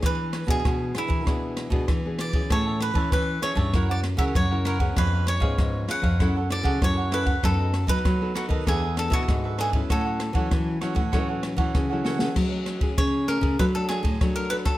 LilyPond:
<<
  \new Staff \with { instrumentName = "Cavaquinho" } { \time 4/4 \key a \major \tempo 4 = 97 r1 | <gis' cis'' e'' a''>16 <cis'' e'' a''>16 r16 <cis'' e'' a''>8. <gis' cis'' e'' a''>16 <cis'' e'' a''>16 <e' ais' cis'' fis''>16 <ais' cis'' fis''>16 r16 <ais' cis'' fis''>8 <ais' cis'' fis''>16 <e' ais' cis'' fis''>16 <ais' cis'' fis''>16 | <eis' b' cis'' eis''>16 <b' cis'' eis''>16 r16 <b' cis'' eis''>8. <eis' b' cis'' eis''>16 <b' cis'' eis''>16 <e' a' cis'' fis''>16 <a' cis'' fis''>16 r16 <a' cis'' fis''>8 <a' cis'' fis''>16 <e' a' cis'' fis''>16 <a' cis'' fis''>16 | <dis' a' b' dis''>16 <a' b' dis''>16 r16 <a' b' dis''>8. <dis' a' b' dis''>16 <a' b' dis''>16 <d' a' b' e''>16 <a' b' e''>16 r16 <a' b' e''>8 <a' b' e''>16 <d' a' b' e''>16 <a' b' e''>16 |
<fis' a' cis'' fis''>16 <a' cis'' fis''>16 r16 <a' cis'' fis''>8. <fis' a' cis'' fis''>16 <a' cis'' fis''>16 <fis' a' cis'' fis''>16 <a' cis'' fis''>16 r16 <a' cis'' fis''>8 <a' cis'' fis''>16 <fis' a' cis'' fis''>16 <a' cis'' fis''>16 | \key fis \minor r1 | }
  \new Staff \with { instrumentName = "Cavaquinho" } { \time 4/4 \key a \major b'8. gis'8. e'2 d''8 | cis''8 b'8 b'8 cis''8. d''8 e''16 cis''8 ais'8 | b'8 cis''4 fis''4 d''8 cis''8 b'8 | a'8. b'8. fis'8 gis'8 a'16 fis'8. gis'8 |
a'2. r4 | \key fis \minor r4 cis''8 ais'8 b'16 a'16 gis'8. ais'16 b'16 a'16 | }
  \new Staff \with { instrumentName = "Nylon-string guitar" } { \time 4/4 \key a \major << { <b d' gis'>8. <b d' gis'>8. <b d' gis'>8 <b d' gis'>8. <b d' gis'>8 <b d' gis'>8 <cis' e' gis'>16~ | <cis' e' gis'>8. <cis' e'>8. <cis' e' gis'>8 <cis' e' ais'>8 r16 <cis' e' ais'>8 <cis' e' ais'>8 <b cis' gis'>16~ | <b cis' gis'>8. <b cis' gis'>8. <b cis' gis'>16 r16 <cis' e' a'>16 r16 <cis' e' a'>8 <cis' e' a'>8 <cis' e' a'>16 r16 | <b dis' a'>8 r16 <b dis' a'>8 <b dis' a'>16 <b dis' a'>8 <b d' a'>16 r16 <b d' a'>4 <b d' a'>16 <fis cis' e'>16~ |
<fis cis' e'>8. <fis cis' e'>8. <fis cis' e'>16 r16 <fis cis' e'>8. <fis cis' e'>8 <fis cis' e'>8 <a cis' gis'>16~ | \key fis \minor <a cis' gis'>8. <a cis' gis'>8. <a cis' gis'>8 <a d' a'>16 <a d' a'>16 <a d' a'>16 r16 <a d' a'>8 <a d' a'>16 r16 | } \\ { e4 b,4 e4 b,4 | a4 e4 fis4 cis4 | eis4 eis4 fis4 cis4 | fis4 fis4 e4 b,4 |
a,4 e4 a,4 e4 | fis4 cis4 fis4 fis4 | } >> }
  \new Staff \with { instrumentName = "Nylon-string guitar" } { \clef bass \time 4/4 \key a \major e8. b,16 b,8 r16 e16 b,8. b,16 e4 | a,8. e16 e8 r16 g,16 fis,8. cis16 fis,4 | eis,8. gis,16 gis,8 r16 eis,16 fis,8. cis16 fis,4 | fis,8. fis16 fis8 r16 dis16 e,8. b,16 gis,4 |
a,8. e16 e8 r16 a,16 e8. e16 cis4 | \key fis \minor fis4 cis8. cis16 fis8. a,16 fis4 | }
  \new DrumStaff \with { instrumentName = "Drums" } \drummode { \time 4/4 <bd cymr ss>8 <cymr ss>16 <bd cymr>16 <bd cymr ss>8 <cymr ss>16 <bd cymr>16 <bd cymr ss>8 <cymr ss>16 <bd cymr>16 <bd cymr ss>8 <cymr ss>16 <bd cymr>16 | <bd cymr ss>8 <cymr ss>16 <bd cymr>16 <bd cymr ss>8 <cymr ss>16 <bd cymr>16 <bd cymr ss>8 <cymr ss>16 <bd cymr>16 <bd cymr ss>8 <cymr ss>16 <bd cymr>16 | <bd cymr ss>8 <cymr ss>16 <bd cymr>16 <bd cymr ss>8 <cymr ss>16 <bd cymr>16 <bd cymr ss>8 <cymr ss>16 <bd cymr>16 <bd cymr ss>8 <cymr ss>16 <bd cymr>16 | <bd cymr ss>8 <cymr ss>16 <bd cymr>16 <bd cymr ss>8 <cymr ss>16 <bd cymr>16 <bd cymr ss>8 <cymr ss>16 <bd cymr>16 <bd cymr ss>8 <cymr ss>16 <bd cymr>16 |
<bd cymr ss>8 <cymr ss>16 <bd cymr>16 <bd cymr ss>8 <cymr ss>16 <bd cymr>16 <bd cymr ss>8 <cymr ss>16 <bd cymr>16 <bd cymr ss>8 sn16 sn16 | <cymc bd ss>8 <cymr ss>16 <bd cymr>16 <bd cymr ss>8 <cymr ss>16 <bd cymr>16 <bd cymr ss>8 <cymr ss>16 <bd cymr>16 <bd cymr ss>8 cymr16 <bd cymr ss>16 | }
>>